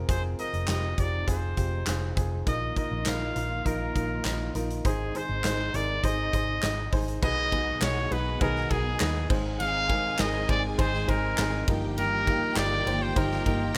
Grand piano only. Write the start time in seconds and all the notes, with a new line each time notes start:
Already playing: C4 F4 G4 G#4 A#4
0.08 C4 F4 G#4
0.39 C4 F4 A#4
0.68 C4 F4 G4
0.97 C4 F4 G4
1.27 C4 F4 G#4
1.57 C4 F4 G4
1.86 C4 F4 G#4
2.16 C4 F4 G#4
2.46 A#2 D#4 F4 A#4
2.76 D#4 F4 A#4
3.06 D#4 F4 A#4
3.35 D#4 F4 A#4
3.65 D#4 F4 A#4
3.95 D#4 F4 A#4
4.25 D#4 F4 A#4
4.55 D#4 F4 A#4
4.85 G#2 D#4 G#4 C5
5.15 D#4 G#4 C5
5.45 D#4 G#4 C5
5.74 D#4 G#4 A#4
6.04 D#4 G#4 C5
6.34 D#4 G#4 C5
6.63 D#4 G#4 D#5
6.93 D#4 G#4 C5
7.22 B2 D#4 F#4 G#4 B4
7.52 D#4 F#4 G#4 B4
7.81 D#4 F#4 G#4 C#5
8.11 D#4 F#4 G#4 B4
8.41 D#4 F#4 G#4 B4
8.70 D#4 F#4 G#4 A#4
8.99 D#4 F#4 G#4 B4
9.29 G#2 C4 D#4 G#4 C5
9.89 C4 D#4 G#4 A#4
10.19 C4 D#4 G#4 A#4
10.48 C4 D#4 G#4 C5
10.78 C4 D#4 G#4 C5
11.07 C4 D#4 G#4 C5
11.38 C4 D#4 G#4 C5
11.68 G2 D#4 F4 G4 A#4
12.27 D#4 F4 G4 A#4
12.57 D#4 F4 G4 A#4
12.86 D#4 F4 G4 C5
13.16 D#4 F4 G4 C5
13.45 D#4 F4 G4 A#4